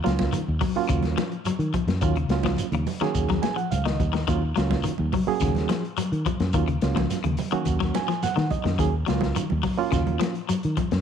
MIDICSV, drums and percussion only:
0, 0, Header, 1, 3, 480
1, 0, Start_track
1, 0, Key_signature, -6, "minor"
1, 0, Tempo, 563910
1, 1725, Time_signature, 4, 2, 24, 8
1, 9373, End_track
2, 0, Start_track
2, 0, Title_t, "Shekere"
2, 48, Note_on_c, 9, 82, 25
2, 133, Note_off_c, 9, 82, 0
2, 279, Note_on_c, 9, 82, 92
2, 364, Note_off_c, 9, 82, 0
2, 518, Note_on_c, 9, 82, 26
2, 603, Note_off_c, 9, 82, 0
2, 756, Note_on_c, 9, 82, 90
2, 841, Note_off_c, 9, 82, 0
2, 1001, Note_on_c, 9, 82, 28
2, 1086, Note_off_c, 9, 82, 0
2, 1236, Note_on_c, 9, 82, 80
2, 1321, Note_off_c, 9, 82, 0
2, 1478, Note_on_c, 9, 82, 26
2, 1563, Note_off_c, 9, 82, 0
2, 1717, Note_on_c, 9, 82, 72
2, 1803, Note_off_c, 9, 82, 0
2, 1960, Note_on_c, 9, 82, 27
2, 2045, Note_off_c, 9, 82, 0
2, 2199, Note_on_c, 9, 82, 89
2, 2284, Note_off_c, 9, 82, 0
2, 2442, Note_on_c, 9, 82, 25
2, 2527, Note_off_c, 9, 82, 0
2, 2681, Note_on_c, 9, 82, 91
2, 2766, Note_off_c, 9, 82, 0
2, 2924, Note_on_c, 9, 82, 30
2, 3009, Note_off_c, 9, 82, 0
2, 3165, Note_on_c, 9, 82, 77
2, 3250, Note_off_c, 9, 82, 0
2, 3411, Note_on_c, 9, 82, 25
2, 3496, Note_off_c, 9, 82, 0
2, 3646, Note_on_c, 9, 82, 73
2, 3731, Note_off_c, 9, 82, 0
2, 3885, Note_on_c, 9, 82, 28
2, 3970, Note_off_c, 9, 82, 0
2, 4115, Note_on_c, 9, 82, 78
2, 4200, Note_off_c, 9, 82, 0
2, 4362, Note_on_c, 9, 82, 24
2, 4447, Note_off_c, 9, 82, 0
2, 4598, Note_on_c, 9, 82, 90
2, 4683, Note_off_c, 9, 82, 0
2, 4844, Note_on_c, 9, 82, 29
2, 4929, Note_off_c, 9, 82, 0
2, 5084, Note_on_c, 9, 82, 84
2, 5169, Note_off_c, 9, 82, 0
2, 5327, Note_on_c, 9, 82, 26
2, 5412, Note_off_c, 9, 82, 0
2, 5557, Note_on_c, 9, 82, 78
2, 5643, Note_off_c, 9, 82, 0
2, 5800, Note_on_c, 9, 82, 28
2, 5885, Note_off_c, 9, 82, 0
2, 6047, Note_on_c, 9, 82, 83
2, 6132, Note_off_c, 9, 82, 0
2, 6287, Note_on_c, 9, 82, 26
2, 6372, Note_off_c, 9, 82, 0
2, 6522, Note_on_c, 9, 82, 91
2, 6607, Note_off_c, 9, 82, 0
2, 6765, Note_on_c, 9, 82, 29
2, 6850, Note_off_c, 9, 82, 0
2, 7006, Note_on_c, 9, 82, 81
2, 7091, Note_off_c, 9, 82, 0
2, 7252, Note_on_c, 9, 82, 25
2, 7337, Note_off_c, 9, 82, 0
2, 7485, Note_on_c, 9, 82, 75
2, 7570, Note_off_c, 9, 82, 0
2, 7731, Note_on_c, 9, 82, 25
2, 7816, Note_off_c, 9, 82, 0
2, 7965, Note_on_c, 9, 82, 87
2, 8050, Note_off_c, 9, 82, 0
2, 8213, Note_on_c, 9, 82, 24
2, 8298, Note_off_c, 9, 82, 0
2, 8449, Note_on_c, 9, 82, 91
2, 8534, Note_off_c, 9, 82, 0
2, 8692, Note_on_c, 9, 82, 32
2, 8777, Note_off_c, 9, 82, 0
2, 8934, Note_on_c, 9, 82, 89
2, 9019, Note_off_c, 9, 82, 0
2, 9169, Note_on_c, 9, 82, 28
2, 9254, Note_off_c, 9, 82, 0
2, 9373, End_track
3, 0, Start_track
3, 0, Title_t, "Drums"
3, 49, Note_on_c, 9, 42, 53
3, 55, Note_on_c, 9, 38, 68
3, 134, Note_off_c, 9, 42, 0
3, 141, Note_off_c, 9, 38, 0
3, 160, Note_on_c, 9, 63, 79
3, 164, Note_on_c, 9, 36, 64
3, 172, Note_on_c, 9, 38, 70
3, 245, Note_off_c, 9, 63, 0
3, 249, Note_off_c, 9, 36, 0
3, 257, Note_off_c, 9, 38, 0
3, 279, Note_on_c, 9, 63, 64
3, 279, Note_on_c, 9, 64, 69
3, 285, Note_on_c, 9, 42, 62
3, 364, Note_off_c, 9, 63, 0
3, 364, Note_off_c, 9, 64, 0
3, 370, Note_off_c, 9, 42, 0
3, 519, Note_on_c, 9, 63, 77
3, 519, Note_on_c, 9, 64, 83
3, 522, Note_on_c, 9, 46, 60
3, 523, Note_on_c, 9, 36, 60
3, 604, Note_off_c, 9, 63, 0
3, 604, Note_off_c, 9, 64, 0
3, 607, Note_off_c, 9, 46, 0
3, 608, Note_off_c, 9, 36, 0
3, 761, Note_on_c, 9, 42, 69
3, 762, Note_on_c, 9, 36, 66
3, 846, Note_off_c, 9, 42, 0
3, 847, Note_off_c, 9, 36, 0
3, 873, Note_on_c, 9, 63, 72
3, 879, Note_on_c, 9, 42, 33
3, 885, Note_on_c, 9, 38, 26
3, 958, Note_off_c, 9, 63, 0
3, 964, Note_off_c, 9, 42, 0
3, 971, Note_off_c, 9, 38, 0
3, 1000, Note_on_c, 9, 42, 51
3, 1003, Note_on_c, 9, 63, 89
3, 1007, Note_on_c, 9, 38, 64
3, 1085, Note_off_c, 9, 42, 0
3, 1088, Note_off_c, 9, 63, 0
3, 1092, Note_off_c, 9, 38, 0
3, 1119, Note_on_c, 9, 42, 31
3, 1204, Note_off_c, 9, 42, 0
3, 1241, Note_on_c, 9, 63, 71
3, 1241, Note_on_c, 9, 64, 60
3, 1244, Note_on_c, 9, 42, 72
3, 1326, Note_off_c, 9, 63, 0
3, 1326, Note_off_c, 9, 64, 0
3, 1329, Note_off_c, 9, 42, 0
3, 1360, Note_on_c, 9, 42, 32
3, 1446, Note_off_c, 9, 42, 0
3, 1478, Note_on_c, 9, 42, 53
3, 1479, Note_on_c, 9, 36, 69
3, 1481, Note_on_c, 9, 63, 64
3, 1481, Note_on_c, 9, 64, 70
3, 1563, Note_off_c, 9, 42, 0
3, 1564, Note_off_c, 9, 36, 0
3, 1566, Note_off_c, 9, 63, 0
3, 1566, Note_off_c, 9, 64, 0
3, 1598, Note_on_c, 9, 42, 34
3, 1605, Note_on_c, 9, 38, 66
3, 1683, Note_off_c, 9, 42, 0
3, 1690, Note_off_c, 9, 38, 0
3, 1712, Note_on_c, 9, 42, 64
3, 1717, Note_on_c, 9, 36, 83
3, 1797, Note_off_c, 9, 42, 0
3, 1802, Note_off_c, 9, 36, 0
3, 1837, Note_on_c, 9, 42, 29
3, 1922, Note_off_c, 9, 42, 0
3, 1952, Note_on_c, 9, 42, 51
3, 1959, Note_on_c, 9, 38, 70
3, 2037, Note_off_c, 9, 42, 0
3, 2044, Note_off_c, 9, 38, 0
3, 2071, Note_on_c, 9, 63, 79
3, 2077, Note_on_c, 9, 36, 59
3, 2084, Note_on_c, 9, 38, 67
3, 2156, Note_off_c, 9, 63, 0
3, 2162, Note_off_c, 9, 36, 0
3, 2169, Note_off_c, 9, 38, 0
3, 2184, Note_on_c, 9, 63, 63
3, 2184, Note_on_c, 9, 64, 67
3, 2197, Note_on_c, 9, 42, 72
3, 2269, Note_off_c, 9, 63, 0
3, 2269, Note_off_c, 9, 64, 0
3, 2282, Note_off_c, 9, 42, 0
3, 2317, Note_on_c, 9, 63, 68
3, 2320, Note_on_c, 9, 42, 32
3, 2402, Note_off_c, 9, 63, 0
3, 2406, Note_off_c, 9, 42, 0
3, 2439, Note_on_c, 9, 46, 59
3, 2441, Note_on_c, 9, 63, 76
3, 2441, Note_on_c, 9, 64, 80
3, 2524, Note_off_c, 9, 46, 0
3, 2526, Note_off_c, 9, 63, 0
3, 2526, Note_off_c, 9, 64, 0
3, 2562, Note_on_c, 9, 42, 32
3, 2569, Note_on_c, 9, 38, 28
3, 2647, Note_off_c, 9, 42, 0
3, 2654, Note_off_c, 9, 38, 0
3, 2678, Note_on_c, 9, 42, 61
3, 2679, Note_on_c, 9, 36, 72
3, 2763, Note_off_c, 9, 42, 0
3, 2764, Note_off_c, 9, 36, 0
3, 2800, Note_on_c, 9, 36, 58
3, 2800, Note_on_c, 9, 63, 70
3, 2809, Note_on_c, 9, 38, 24
3, 2885, Note_off_c, 9, 63, 0
3, 2886, Note_off_c, 9, 36, 0
3, 2894, Note_off_c, 9, 38, 0
3, 2918, Note_on_c, 9, 63, 79
3, 2920, Note_on_c, 9, 42, 51
3, 2927, Note_on_c, 9, 38, 72
3, 3003, Note_off_c, 9, 63, 0
3, 3006, Note_off_c, 9, 42, 0
3, 3012, Note_off_c, 9, 38, 0
3, 3047, Note_on_c, 9, 42, 32
3, 3132, Note_off_c, 9, 42, 0
3, 3163, Note_on_c, 9, 42, 65
3, 3165, Note_on_c, 9, 63, 76
3, 3248, Note_off_c, 9, 42, 0
3, 3250, Note_off_c, 9, 63, 0
3, 3283, Note_on_c, 9, 42, 30
3, 3290, Note_on_c, 9, 38, 63
3, 3368, Note_off_c, 9, 42, 0
3, 3375, Note_off_c, 9, 38, 0
3, 3403, Note_on_c, 9, 36, 64
3, 3404, Note_on_c, 9, 42, 50
3, 3406, Note_on_c, 9, 63, 65
3, 3406, Note_on_c, 9, 64, 73
3, 3488, Note_off_c, 9, 36, 0
3, 3489, Note_off_c, 9, 42, 0
3, 3491, Note_off_c, 9, 63, 0
3, 3491, Note_off_c, 9, 64, 0
3, 3524, Note_on_c, 9, 42, 32
3, 3531, Note_on_c, 9, 38, 71
3, 3609, Note_off_c, 9, 42, 0
3, 3616, Note_off_c, 9, 38, 0
3, 3645, Note_on_c, 9, 36, 82
3, 3646, Note_on_c, 9, 42, 57
3, 3730, Note_off_c, 9, 36, 0
3, 3731, Note_off_c, 9, 42, 0
3, 3890, Note_on_c, 9, 42, 47
3, 3896, Note_on_c, 9, 38, 66
3, 3975, Note_off_c, 9, 42, 0
3, 3982, Note_off_c, 9, 38, 0
3, 4006, Note_on_c, 9, 63, 78
3, 4007, Note_on_c, 9, 36, 63
3, 4017, Note_on_c, 9, 38, 63
3, 4091, Note_off_c, 9, 63, 0
3, 4092, Note_off_c, 9, 36, 0
3, 4102, Note_off_c, 9, 38, 0
3, 4119, Note_on_c, 9, 64, 66
3, 4132, Note_on_c, 9, 42, 64
3, 4204, Note_off_c, 9, 64, 0
3, 4217, Note_off_c, 9, 42, 0
3, 4238, Note_on_c, 9, 63, 70
3, 4324, Note_off_c, 9, 63, 0
3, 4364, Note_on_c, 9, 63, 82
3, 4364, Note_on_c, 9, 64, 79
3, 4369, Note_on_c, 9, 36, 63
3, 4375, Note_on_c, 9, 46, 57
3, 4449, Note_off_c, 9, 63, 0
3, 4449, Note_off_c, 9, 64, 0
3, 4454, Note_off_c, 9, 36, 0
3, 4460, Note_off_c, 9, 46, 0
3, 4610, Note_on_c, 9, 36, 62
3, 4616, Note_on_c, 9, 42, 69
3, 4623, Note_on_c, 9, 38, 28
3, 4695, Note_off_c, 9, 36, 0
3, 4702, Note_off_c, 9, 42, 0
3, 4708, Note_off_c, 9, 38, 0
3, 4723, Note_on_c, 9, 63, 69
3, 4734, Note_on_c, 9, 42, 32
3, 4741, Note_on_c, 9, 38, 29
3, 4808, Note_off_c, 9, 63, 0
3, 4819, Note_off_c, 9, 42, 0
3, 4826, Note_off_c, 9, 38, 0
3, 4847, Note_on_c, 9, 63, 80
3, 4853, Note_on_c, 9, 42, 50
3, 4859, Note_on_c, 9, 38, 63
3, 4932, Note_off_c, 9, 63, 0
3, 4938, Note_off_c, 9, 42, 0
3, 4944, Note_off_c, 9, 38, 0
3, 4975, Note_on_c, 9, 42, 32
3, 5060, Note_off_c, 9, 42, 0
3, 5092, Note_on_c, 9, 42, 73
3, 5093, Note_on_c, 9, 63, 75
3, 5177, Note_off_c, 9, 42, 0
3, 5178, Note_off_c, 9, 63, 0
3, 5215, Note_on_c, 9, 42, 33
3, 5300, Note_off_c, 9, 42, 0
3, 5327, Note_on_c, 9, 36, 69
3, 5327, Note_on_c, 9, 42, 58
3, 5333, Note_on_c, 9, 63, 66
3, 5333, Note_on_c, 9, 64, 78
3, 5412, Note_off_c, 9, 36, 0
3, 5412, Note_off_c, 9, 42, 0
3, 5418, Note_off_c, 9, 63, 0
3, 5418, Note_off_c, 9, 64, 0
3, 5446, Note_on_c, 9, 42, 33
3, 5452, Note_on_c, 9, 38, 72
3, 5531, Note_off_c, 9, 42, 0
3, 5537, Note_off_c, 9, 38, 0
3, 5564, Note_on_c, 9, 42, 63
3, 5565, Note_on_c, 9, 36, 79
3, 5649, Note_off_c, 9, 42, 0
3, 5650, Note_off_c, 9, 36, 0
3, 5684, Note_on_c, 9, 42, 36
3, 5769, Note_off_c, 9, 42, 0
3, 5801, Note_on_c, 9, 42, 58
3, 5808, Note_on_c, 9, 38, 67
3, 5886, Note_off_c, 9, 42, 0
3, 5893, Note_off_c, 9, 38, 0
3, 5921, Note_on_c, 9, 36, 62
3, 5925, Note_on_c, 9, 38, 66
3, 5932, Note_on_c, 9, 63, 84
3, 6006, Note_off_c, 9, 36, 0
3, 6010, Note_off_c, 9, 38, 0
3, 6017, Note_off_c, 9, 63, 0
3, 6046, Note_on_c, 9, 42, 73
3, 6052, Note_on_c, 9, 38, 27
3, 6062, Note_on_c, 9, 63, 62
3, 6131, Note_off_c, 9, 42, 0
3, 6138, Note_off_c, 9, 38, 0
3, 6147, Note_off_c, 9, 63, 0
3, 6159, Note_on_c, 9, 42, 34
3, 6181, Note_on_c, 9, 63, 66
3, 6244, Note_off_c, 9, 42, 0
3, 6266, Note_off_c, 9, 63, 0
3, 6273, Note_on_c, 9, 46, 60
3, 6287, Note_on_c, 9, 63, 81
3, 6287, Note_on_c, 9, 64, 78
3, 6358, Note_off_c, 9, 46, 0
3, 6372, Note_off_c, 9, 63, 0
3, 6372, Note_off_c, 9, 64, 0
3, 6394, Note_on_c, 9, 42, 33
3, 6480, Note_off_c, 9, 42, 0
3, 6514, Note_on_c, 9, 42, 67
3, 6519, Note_on_c, 9, 36, 66
3, 6599, Note_off_c, 9, 42, 0
3, 6604, Note_off_c, 9, 36, 0
3, 6641, Note_on_c, 9, 36, 60
3, 6647, Note_on_c, 9, 38, 26
3, 6726, Note_off_c, 9, 36, 0
3, 6733, Note_off_c, 9, 38, 0
3, 6762, Note_on_c, 9, 42, 52
3, 6765, Note_on_c, 9, 63, 93
3, 6768, Note_on_c, 9, 38, 67
3, 6847, Note_off_c, 9, 42, 0
3, 6850, Note_off_c, 9, 63, 0
3, 6854, Note_off_c, 9, 38, 0
3, 6882, Note_on_c, 9, 42, 32
3, 6889, Note_on_c, 9, 38, 27
3, 6967, Note_off_c, 9, 42, 0
3, 6974, Note_off_c, 9, 38, 0
3, 7003, Note_on_c, 9, 63, 77
3, 7003, Note_on_c, 9, 64, 70
3, 7004, Note_on_c, 9, 42, 68
3, 7010, Note_on_c, 9, 38, 27
3, 7088, Note_off_c, 9, 63, 0
3, 7088, Note_off_c, 9, 64, 0
3, 7089, Note_off_c, 9, 42, 0
3, 7095, Note_off_c, 9, 38, 0
3, 7121, Note_on_c, 9, 42, 28
3, 7127, Note_on_c, 9, 38, 64
3, 7206, Note_off_c, 9, 42, 0
3, 7212, Note_off_c, 9, 38, 0
3, 7239, Note_on_c, 9, 63, 74
3, 7239, Note_on_c, 9, 64, 70
3, 7243, Note_on_c, 9, 36, 71
3, 7247, Note_on_c, 9, 42, 51
3, 7324, Note_off_c, 9, 63, 0
3, 7324, Note_off_c, 9, 64, 0
3, 7328, Note_off_c, 9, 36, 0
3, 7332, Note_off_c, 9, 42, 0
3, 7364, Note_on_c, 9, 42, 33
3, 7371, Note_on_c, 9, 38, 70
3, 7450, Note_off_c, 9, 42, 0
3, 7456, Note_off_c, 9, 38, 0
3, 7482, Note_on_c, 9, 36, 83
3, 7483, Note_on_c, 9, 42, 65
3, 7567, Note_off_c, 9, 36, 0
3, 7568, Note_off_c, 9, 42, 0
3, 7724, Note_on_c, 9, 42, 46
3, 7730, Note_on_c, 9, 38, 62
3, 7809, Note_off_c, 9, 42, 0
3, 7816, Note_off_c, 9, 38, 0
3, 7837, Note_on_c, 9, 63, 80
3, 7844, Note_on_c, 9, 36, 61
3, 7853, Note_on_c, 9, 38, 68
3, 7922, Note_off_c, 9, 63, 0
3, 7929, Note_off_c, 9, 36, 0
3, 7938, Note_off_c, 9, 38, 0
3, 7964, Note_on_c, 9, 63, 74
3, 7968, Note_on_c, 9, 42, 70
3, 8049, Note_off_c, 9, 63, 0
3, 8053, Note_off_c, 9, 42, 0
3, 8086, Note_on_c, 9, 63, 73
3, 8171, Note_off_c, 9, 63, 0
3, 8203, Note_on_c, 9, 63, 74
3, 8203, Note_on_c, 9, 64, 79
3, 8208, Note_on_c, 9, 36, 63
3, 8208, Note_on_c, 9, 46, 63
3, 8288, Note_off_c, 9, 63, 0
3, 8288, Note_off_c, 9, 64, 0
3, 8293, Note_off_c, 9, 36, 0
3, 8293, Note_off_c, 9, 46, 0
3, 8445, Note_on_c, 9, 42, 66
3, 8448, Note_on_c, 9, 36, 62
3, 8452, Note_on_c, 9, 38, 28
3, 8530, Note_off_c, 9, 42, 0
3, 8533, Note_off_c, 9, 36, 0
3, 8537, Note_off_c, 9, 38, 0
3, 8570, Note_on_c, 9, 63, 77
3, 8571, Note_on_c, 9, 42, 28
3, 8655, Note_off_c, 9, 63, 0
3, 8657, Note_off_c, 9, 42, 0
3, 8688, Note_on_c, 9, 42, 53
3, 8689, Note_on_c, 9, 63, 84
3, 8695, Note_on_c, 9, 38, 66
3, 8773, Note_off_c, 9, 42, 0
3, 8774, Note_off_c, 9, 63, 0
3, 8780, Note_off_c, 9, 38, 0
3, 8809, Note_on_c, 9, 42, 31
3, 8894, Note_off_c, 9, 42, 0
3, 8928, Note_on_c, 9, 42, 65
3, 8935, Note_on_c, 9, 63, 71
3, 9013, Note_off_c, 9, 42, 0
3, 9020, Note_off_c, 9, 63, 0
3, 9049, Note_on_c, 9, 42, 33
3, 9134, Note_off_c, 9, 42, 0
3, 9165, Note_on_c, 9, 42, 58
3, 9169, Note_on_c, 9, 36, 61
3, 9174, Note_on_c, 9, 63, 71
3, 9174, Note_on_c, 9, 64, 71
3, 9250, Note_off_c, 9, 42, 0
3, 9254, Note_off_c, 9, 36, 0
3, 9260, Note_off_c, 9, 63, 0
3, 9260, Note_off_c, 9, 64, 0
3, 9288, Note_on_c, 9, 42, 33
3, 9295, Note_on_c, 9, 38, 71
3, 9373, Note_off_c, 9, 38, 0
3, 9373, Note_off_c, 9, 42, 0
3, 9373, End_track
0, 0, End_of_file